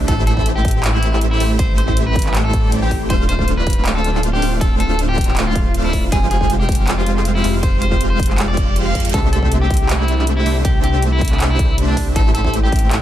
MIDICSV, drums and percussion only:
0, 0, Header, 1, 2, 480
1, 0, Start_track
1, 0, Tempo, 377358
1, 104, Time_signature, 4, 2, 24, 8
1, 16559, End_track
2, 0, Start_track
2, 0, Title_t, "Drums"
2, 104, Note_on_c, 9, 42, 85
2, 104, Note_on_c, 9, 51, 45
2, 105, Note_on_c, 9, 36, 124
2, 231, Note_off_c, 9, 42, 0
2, 231, Note_off_c, 9, 51, 0
2, 232, Note_off_c, 9, 36, 0
2, 344, Note_on_c, 9, 42, 73
2, 471, Note_off_c, 9, 42, 0
2, 471, Note_on_c, 9, 36, 67
2, 583, Note_on_c, 9, 42, 79
2, 598, Note_off_c, 9, 36, 0
2, 711, Note_off_c, 9, 42, 0
2, 824, Note_on_c, 9, 42, 54
2, 825, Note_on_c, 9, 36, 113
2, 866, Note_off_c, 9, 42, 0
2, 866, Note_on_c, 9, 42, 68
2, 905, Note_off_c, 9, 42, 0
2, 905, Note_on_c, 9, 42, 84
2, 953, Note_off_c, 9, 36, 0
2, 1032, Note_off_c, 9, 42, 0
2, 1065, Note_on_c, 9, 39, 125
2, 1065, Note_on_c, 9, 42, 83
2, 1192, Note_off_c, 9, 39, 0
2, 1192, Note_off_c, 9, 42, 0
2, 1305, Note_on_c, 9, 42, 72
2, 1431, Note_on_c, 9, 39, 39
2, 1433, Note_off_c, 9, 42, 0
2, 1544, Note_on_c, 9, 42, 81
2, 1558, Note_off_c, 9, 39, 0
2, 1671, Note_off_c, 9, 42, 0
2, 1785, Note_on_c, 9, 46, 92
2, 1912, Note_off_c, 9, 46, 0
2, 2024, Note_on_c, 9, 42, 79
2, 2024, Note_on_c, 9, 51, 48
2, 2025, Note_on_c, 9, 36, 127
2, 2151, Note_off_c, 9, 42, 0
2, 2151, Note_off_c, 9, 51, 0
2, 2152, Note_off_c, 9, 36, 0
2, 2265, Note_on_c, 9, 42, 69
2, 2391, Note_on_c, 9, 36, 66
2, 2392, Note_off_c, 9, 42, 0
2, 2504, Note_on_c, 9, 42, 82
2, 2518, Note_off_c, 9, 36, 0
2, 2631, Note_off_c, 9, 42, 0
2, 2745, Note_on_c, 9, 36, 110
2, 2745, Note_on_c, 9, 42, 52
2, 2785, Note_off_c, 9, 42, 0
2, 2785, Note_on_c, 9, 42, 66
2, 2823, Note_off_c, 9, 42, 0
2, 2823, Note_on_c, 9, 42, 83
2, 2869, Note_on_c, 9, 39, 40
2, 2872, Note_off_c, 9, 36, 0
2, 2950, Note_off_c, 9, 42, 0
2, 2984, Note_off_c, 9, 39, 0
2, 2984, Note_on_c, 9, 39, 127
2, 2984, Note_on_c, 9, 42, 83
2, 3112, Note_off_c, 9, 39, 0
2, 3112, Note_off_c, 9, 42, 0
2, 3224, Note_on_c, 9, 42, 67
2, 3225, Note_on_c, 9, 36, 110
2, 3351, Note_off_c, 9, 42, 0
2, 3352, Note_off_c, 9, 36, 0
2, 3464, Note_on_c, 9, 42, 82
2, 3591, Note_off_c, 9, 42, 0
2, 3703, Note_on_c, 9, 46, 92
2, 3705, Note_on_c, 9, 36, 65
2, 3831, Note_off_c, 9, 46, 0
2, 3832, Note_off_c, 9, 36, 0
2, 3944, Note_on_c, 9, 42, 79
2, 3944, Note_on_c, 9, 51, 47
2, 3945, Note_on_c, 9, 36, 122
2, 4071, Note_off_c, 9, 42, 0
2, 4071, Note_off_c, 9, 51, 0
2, 4073, Note_off_c, 9, 36, 0
2, 4184, Note_on_c, 9, 42, 66
2, 4311, Note_on_c, 9, 36, 62
2, 4312, Note_off_c, 9, 42, 0
2, 4424, Note_on_c, 9, 42, 75
2, 4438, Note_off_c, 9, 36, 0
2, 4551, Note_off_c, 9, 42, 0
2, 4664, Note_on_c, 9, 42, 50
2, 4666, Note_on_c, 9, 36, 106
2, 4706, Note_off_c, 9, 42, 0
2, 4706, Note_on_c, 9, 42, 64
2, 4744, Note_off_c, 9, 42, 0
2, 4744, Note_on_c, 9, 42, 79
2, 4793, Note_off_c, 9, 36, 0
2, 4871, Note_off_c, 9, 42, 0
2, 4904, Note_on_c, 9, 39, 120
2, 4904, Note_on_c, 9, 42, 79
2, 5032, Note_off_c, 9, 39, 0
2, 5032, Note_off_c, 9, 42, 0
2, 5145, Note_on_c, 9, 42, 67
2, 5270, Note_on_c, 9, 39, 38
2, 5272, Note_off_c, 9, 42, 0
2, 5385, Note_on_c, 9, 42, 78
2, 5397, Note_off_c, 9, 39, 0
2, 5512, Note_off_c, 9, 42, 0
2, 5626, Note_on_c, 9, 46, 93
2, 5753, Note_off_c, 9, 46, 0
2, 5866, Note_on_c, 9, 36, 117
2, 5867, Note_on_c, 9, 42, 78
2, 5867, Note_on_c, 9, 51, 53
2, 5993, Note_off_c, 9, 36, 0
2, 5994, Note_off_c, 9, 42, 0
2, 5994, Note_off_c, 9, 51, 0
2, 6106, Note_on_c, 9, 42, 66
2, 6233, Note_off_c, 9, 42, 0
2, 6346, Note_on_c, 9, 42, 76
2, 6473, Note_off_c, 9, 42, 0
2, 6587, Note_on_c, 9, 36, 102
2, 6587, Note_on_c, 9, 42, 48
2, 6628, Note_off_c, 9, 42, 0
2, 6628, Note_on_c, 9, 42, 65
2, 6667, Note_off_c, 9, 42, 0
2, 6667, Note_on_c, 9, 42, 80
2, 6712, Note_on_c, 9, 39, 38
2, 6714, Note_off_c, 9, 36, 0
2, 6795, Note_off_c, 9, 42, 0
2, 6827, Note_off_c, 9, 39, 0
2, 6827, Note_on_c, 9, 39, 118
2, 6827, Note_on_c, 9, 42, 77
2, 6954, Note_off_c, 9, 39, 0
2, 6954, Note_off_c, 9, 42, 0
2, 7067, Note_on_c, 9, 36, 105
2, 7067, Note_on_c, 9, 42, 65
2, 7194, Note_off_c, 9, 36, 0
2, 7194, Note_off_c, 9, 42, 0
2, 7307, Note_on_c, 9, 42, 78
2, 7434, Note_off_c, 9, 42, 0
2, 7546, Note_on_c, 9, 46, 95
2, 7547, Note_on_c, 9, 36, 59
2, 7673, Note_off_c, 9, 46, 0
2, 7674, Note_off_c, 9, 36, 0
2, 7786, Note_on_c, 9, 42, 81
2, 7786, Note_on_c, 9, 51, 51
2, 7787, Note_on_c, 9, 36, 117
2, 7913, Note_off_c, 9, 42, 0
2, 7913, Note_off_c, 9, 51, 0
2, 7914, Note_off_c, 9, 36, 0
2, 8025, Note_on_c, 9, 42, 67
2, 8152, Note_on_c, 9, 36, 62
2, 8153, Note_off_c, 9, 42, 0
2, 8266, Note_on_c, 9, 42, 77
2, 8279, Note_off_c, 9, 36, 0
2, 8393, Note_off_c, 9, 42, 0
2, 8506, Note_on_c, 9, 36, 105
2, 8506, Note_on_c, 9, 42, 50
2, 8548, Note_off_c, 9, 42, 0
2, 8548, Note_on_c, 9, 42, 66
2, 8587, Note_off_c, 9, 42, 0
2, 8587, Note_on_c, 9, 42, 80
2, 8633, Note_off_c, 9, 36, 0
2, 8714, Note_off_c, 9, 42, 0
2, 8746, Note_on_c, 9, 39, 112
2, 8746, Note_on_c, 9, 42, 76
2, 8873, Note_off_c, 9, 39, 0
2, 8873, Note_off_c, 9, 42, 0
2, 8987, Note_on_c, 9, 42, 68
2, 9112, Note_on_c, 9, 39, 36
2, 9114, Note_off_c, 9, 42, 0
2, 9225, Note_on_c, 9, 42, 78
2, 9239, Note_off_c, 9, 39, 0
2, 9353, Note_off_c, 9, 42, 0
2, 9466, Note_on_c, 9, 46, 102
2, 9593, Note_off_c, 9, 46, 0
2, 9705, Note_on_c, 9, 36, 117
2, 9705, Note_on_c, 9, 42, 84
2, 9705, Note_on_c, 9, 51, 51
2, 9832, Note_off_c, 9, 36, 0
2, 9832, Note_off_c, 9, 42, 0
2, 9832, Note_off_c, 9, 51, 0
2, 9944, Note_on_c, 9, 42, 70
2, 10070, Note_on_c, 9, 36, 62
2, 10071, Note_off_c, 9, 42, 0
2, 10185, Note_on_c, 9, 42, 83
2, 10197, Note_off_c, 9, 36, 0
2, 10312, Note_off_c, 9, 42, 0
2, 10425, Note_on_c, 9, 36, 102
2, 10425, Note_on_c, 9, 42, 53
2, 10466, Note_off_c, 9, 42, 0
2, 10466, Note_on_c, 9, 42, 68
2, 10503, Note_off_c, 9, 42, 0
2, 10503, Note_on_c, 9, 42, 87
2, 10550, Note_on_c, 9, 39, 37
2, 10552, Note_off_c, 9, 36, 0
2, 10631, Note_off_c, 9, 42, 0
2, 10663, Note_off_c, 9, 39, 0
2, 10663, Note_on_c, 9, 39, 115
2, 10663, Note_on_c, 9, 42, 82
2, 10791, Note_off_c, 9, 39, 0
2, 10791, Note_off_c, 9, 42, 0
2, 10904, Note_on_c, 9, 36, 104
2, 10904, Note_on_c, 9, 42, 70
2, 11031, Note_off_c, 9, 42, 0
2, 11032, Note_off_c, 9, 36, 0
2, 11144, Note_on_c, 9, 42, 83
2, 11271, Note_off_c, 9, 42, 0
2, 11384, Note_on_c, 9, 36, 63
2, 11385, Note_on_c, 9, 42, 58
2, 11448, Note_off_c, 9, 42, 0
2, 11448, Note_on_c, 9, 42, 70
2, 11510, Note_off_c, 9, 42, 0
2, 11510, Note_on_c, 9, 42, 77
2, 11511, Note_off_c, 9, 36, 0
2, 11568, Note_off_c, 9, 42, 0
2, 11568, Note_on_c, 9, 42, 85
2, 11625, Note_off_c, 9, 42, 0
2, 11625, Note_on_c, 9, 36, 122
2, 11625, Note_on_c, 9, 42, 82
2, 11625, Note_on_c, 9, 51, 50
2, 11752, Note_off_c, 9, 36, 0
2, 11753, Note_off_c, 9, 42, 0
2, 11753, Note_off_c, 9, 51, 0
2, 11866, Note_on_c, 9, 42, 71
2, 11990, Note_on_c, 9, 36, 63
2, 11993, Note_off_c, 9, 42, 0
2, 12104, Note_on_c, 9, 42, 84
2, 12117, Note_off_c, 9, 36, 0
2, 12232, Note_off_c, 9, 42, 0
2, 12345, Note_on_c, 9, 36, 111
2, 12345, Note_on_c, 9, 42, 53
2, 12386, Note_off_c, 9, 42, 0
2, 12386, Note_on_c, 9, 42, 69
2, 12425, Note_off_c, 9, 42, 0
2, 12425, Note_on_c, 9, 42, 87
2, 12472, Note_off_c, 9, 36, 0
2, 12552, Note_off_c, 9, 42, 0
2, 12585, Note_on_c, 9, 39, 121
2, 12585, Note_on_c, 9, 42, 86
2, 12712, Note_off_c, 9, 39, 0
2, 12712, Note_off_c, 9, 42, 0
2, 12825, Note_on_c, 9, 42, 70
2, 12951, Note_on_c, 9, 39, 38
2, 12952, Note_off_c, 9, 42, 0
2, 13065, Note_on_c, 9, 42, 81
2, 13078, Note_off_c, 9, 39, 0
2, 13192, Note_off_c, 9, 42, 0
2, 13305, Note_on_c, 9, 46, 99
2, 13432, Note_off_c, 9, 46, 0
2, 13544, Note_on_c, 9, 42, 89
2, 13544, Note_on_c, 9, 51, 48
2, 13545, Note_on_c, 9, 36, 127
2, 13671, Note_off_c, 9, 42, 0
2, 13671, Note_off_c, 9, 51, 0
2, 13672, Note_off_c, 9, 36, 0
2, 13784, Note_on_c, 9, 42, 70
2, 13911, Note_off_c, 9, 42, 0
2, 14024, Note_on_c, 9, 42, 81
2, 14151, Note_off_c, 9, 42, 0
2, 14264, Note_on_c, 9, 36, 115
2, 14264, Note_on_c, 9, 42, 53
2, 14306, Note_off_c, 9, 42, 0
2, 14306, Note_on_c, 9, 42, 69
2, 14344, Note_off_c, 9, 42, 0
2, 14344, Note_on_c, 9, 42, 85
2, 14390, Note_on_c, 9, 39, 39
2, 14392, Note_off_c, 9, 36, 0
2, 14471, Note_off_c, 9, 42, 0
2, 14505, Note_off_c, 9, 39, 0
2, 14505, Note_on_c, 9, 39, 124
2, 14505, Note_on_c, 9, 42, 85
2, 14633, Note_off_c, 9, 39, 0
2, 14633, Note_off_c, 9, 42, 0
2, 14744, Note_on_c, 9, 36, 116
2, 14745, Note_on_c, 9, 42, 71
2, 14871, Note_off_c, 9, 36, 0
2, 14872, Note_off_c, 9, 42, 0
2, 14985, Note_on_c, 9, 42, 85
2, 15112, Note_off_c, 9, 42, 0
2, 15224, Note_on_c, 9, 36, 65
2, 15226, Note_on_c, 9, 46, 96
2, 15351, Note_off_c, 9, 36, 0
2, 15353, Note_off_c, 9, 46, 0
2, 15464, Note_on_c, 9, 36, 127
2, 15466, Note_on_c, 9, 42, 85
2, 15466, Note_on_c, 9, 51, 47
2, 15592, Note_off_c, 9, 36, 0
2, 15593, Note_off_c, 9, 42, 0
2, 15593, Note_off_c, 9, 51, 0
2, 15706, Note_on_c, 9, 42, 71
2, 15830, Note_on_c, 9, 36, 69
2, 15833, Note_off_c, 9, 42, 0
2, 15945, Note_on_c, 9, 42, 80
2, 15957, Note_off_c, 9, 36, 0
2, 16073, Note_off_c, 9, 42, 0
2, 16185, Note_on_c, 9, 36, 113
2, 16186, Note_on_c, 9, 42, 53
2, 16228, Note_off_c, 9, 42, 0
2, 16228, Note_on_c, 9, 42, 69
2, 16265, Note_off_c, 9, 42, 0
2, 16265, Note_on_c, 9, 42, 82
2, 16312, Note_off_c, 9, 36, 0
2, 16393, Note_off_c, 9, 42, 0
2, 16426, Note_on_c, 9, 39, 126
2, 16426, Note_on_c, 9, 42, 85
2, 16553, Note_off_c, 9, 39, 0
2, 16553, Note_off_c, 9, 42, 0
2, 16559, End_track
0, 0, End_of_file